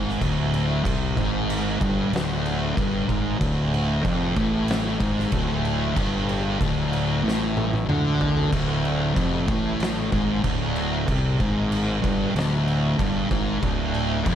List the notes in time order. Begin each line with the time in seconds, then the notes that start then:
Already playing: G#1 G#2
0.09 snare
0.21 D1 D2, kick, crash
0.54 crash
0.84 C2 C3, kick, crash
1.17 G#1 G#2, kick, crash
1.50 crash
1.80 G1 G2, kick, crash
2.10 D1 D2, crash
2.16 snare
2.46 crash
2.77 G1 G2, kick, crash
3.08 G#1 G#2, kick, crash
3.40 D1 D2, kick, crash
3.74 crash
4.04 F1 F2, kick, crash
4.36 A1 A2, kick, crash
4.68 snare, crash
4.99 G#1 G#2, kick, crash
5.19 snare
5.32 D1 D2, kick, crash
5.65 crash
5.97 G1 G2, kick, crash
6.29 crash
6.60 D1 D2, kick, crash
6.93 crash
7.22 A1 A2
7.28 snare
7.57 high tom
7.73 high tom
7.87 D2 D3, mid tom
8.21 floor tom
8.37 floor tom
8.52 D1 D2, kick, crash
8.85 crash
9.15 F1 F2, kick, crash
9.47 A1 A2, kick, crash
9.80 snare, crash
10.12 G#1 G#2, kick, crash
10.43 D1 D2, kick, crash
10.76 crash
11.07 C2 C3, kick, crash
11.40 G#1 G#2, kick, crash
11.72 crash
12.02 G1 G2, kick, crash
12.34 D1 D2, crash
12.39 snare
12.68 crash
12.98 G1 G2, kick, crash
13.31 G#1 G#2, kick, crash
13.62 D1 D2, kick, crash
13.94 crash
14.26 F1 F2, kick, crash